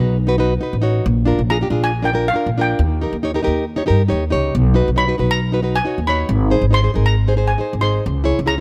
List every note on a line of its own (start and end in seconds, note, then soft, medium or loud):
0.00 0.55 B1 loud
0.00 0.16 D#4 medium
0.00 0.16 F#4 medium
0.00 0.17 B4 medium
0.27 0.34 D#4 medium
0.27 0.35 F#4 medium
0.27 0.35 B4 loud
0.38 0.52 D#4 medium
0.38 0.53 F#4 medium
0.38 0.53 B4 medium
0.61 0.75 D#4 medium
0.61 0.75 F#4 medium
0.61 0.76 B4 medium
0.73 0.98 A1 medium
0.82 1.04 D#4 medium
0.82 1.05 F#4 medium
0.82 1.05 C#5 medium
1.06 1.31 A#1 loud
1.25 1.40 D4 medium
1.25 1.40 F4 medium
1.25 1.41 A#4 loud
1.39 1.63 A#1 medium
1.50 1.56 D4 medium
1.50 1.56 F4 medium
1.50 1.57 G#4 medium
1.50 1.84 A#5 loud
1.61 1.67 D4 medium
1.61 1.67 F4 medium
1.61 1.68 G4 medium
1.70 2.29 A#1 medium
1.70 1.90 D4 medium
1.70 1.91 F4 medium
1.70 1.91 G#4 medium
1.84 2.05 G#5 loud
2.02 2.10 D4 medium
2.02 2.10 F4 medium
2.02 2.10 A#4 medium
2.02 2.27 G5 medium
2.13 2.27 D4 medium
2.13 2.28 F4 medium
2.13 2.28 A#4 medium
2.28 2.57 F5 loud
2.33 2.48 D4 medium
2.33 2.49 F4 medium
2.33 2.50 A#4 medium
2.46 2.71 A#1 medium
2.58 2.80 D4 medium
2.58 2.80 F4 medium
2.58 2.80 A#4 medium
2.58 3.43 G5 medium
2.79 3.05 D#2 loud
3.01 3.15 D#4 medium
3.01 3.15 G4 medium
3.01 3.16 A#4 medium
3.13 3.37 D#2 medium
3.23 3.30 D#4 medium
3.23 3.30 G4 medium
3.23 3.31 C#5 loud
3.34 3.41 D#4 medium
3.34 3.41 G4 medium
3.34 3.42 A#4 medium
3.42 3.64 D#4 medium
3.42 3.64 G4 medium
3.42 3.65 A#4 loud
3.47 3.80 D#2 medium
3.76 3.84 D#4 medium
3.76 3.84 G4 medium
3.76 3.84 C#5 medium
3.86 4.01 D#4 medium
3.86 4.01 G4 medium
3.86 4.02 A#4 loud
3.90 4.09 G2 medium
4.08 4.31 D#2 medium
4.08 4.23 D#4 medium
4.08 4.23 G4 medium
4.08 4.24 C#5 medium
4.30 4.53 C#2 medium
4.30 4.54 D#4 medium
4.30 4.54 G4 medium
4.30 4.54 C#5 loud
4.55 4.80 B1 loud
4.74 4.89 D#4 medium
4.74 4.89 F#4 medium
4.74 4.89 B4 loud
4.88 5.12 B1 medium
4.96 5.04 D#4 medium
4.96 5.04 F#4 medium
4.96 5.05 C#5 medium
4.96 5.32 B5 loud
5.07 5.15 D#4 medium
5.07 5.15 F#4 medium
5.07 5.15 B4 medium
5.18 5.78 B1 medium
5.18 5.39 D#4 medium
5.18 5.39 F#4 medium
5.18 5.40 B4 medium
5.31 5.76 A#5 loud
5.52 5.59 D#4 medium
5.52 5.60 F#4 medium
5.52 5.60 B4 medium
5.62 5.77 D#4 medium
5.62 5.77 F#4 medium
5.62 5.77 B4 medium
5.76 6.09 G#5 medium
5.85 5.99 D#4 medium
5.85 5.99 F#4 medium
5.85 6.00 C#5 medium
5.98 6.22 D#2 medium
6.07 6.29 D#4 medium
6.07 6.30 F#4 medium
6.07 6.30 C#5 medium
6.07 6.28 B5 medium
6.29 6.54 G#1 loud
6.50 6.64 D#4 medium
6.50 6.65 G#4 medium
6.50 6.65 C5 loud
6.61 6.86 G#1 medium
6.71 6.79 D#4 medium
6.71 6.79 G#4 medium
6.71 6.80 C5 medium
6.71 7.08 C6 loud
6.82 6.90 D#4 medium
6.82 6.90 G#4 medium
6.82 6.91 C5 medium
6.94 7.54 G#1 medium
6.94 7.14 D#4 medium
6.94 7.15 G#4 medium
6.94 7.15 A#4 medium
7.06 7.51 A#5 loud
7.27 7.34 D#4 medium
7.27 7.35 G#4 medium
7.27 7.35 C5 medium
7.37 7.51 D#4 medium
7.37 7.51 G#4 medium
7.37 7.52 C5 medium
7.48 7.82 G#5 medium
7.58 7.73 D#4 medium
7.58 7.73 G#4 medium
7.58 7.74 C5 medium
7.73 7.97 G#1 medium
7.81 8.03 D#4 medium
7.81 8.04 G#4 medium
7.81 8.04 C5 medium
7.81 8.02 C6 medium
8.06 8.31 C#2 loud
8.24 8.38 E4 medium
8.24 8.39 G#4 medium
8.24 8.39 C#5 loud
8.39 8.60 C#2 medium
8.46 8.54 E4 medium
8.46 8.54 G#4 medium
8.46 8.55 C#5 medium
8.46 8.60 A#5 loud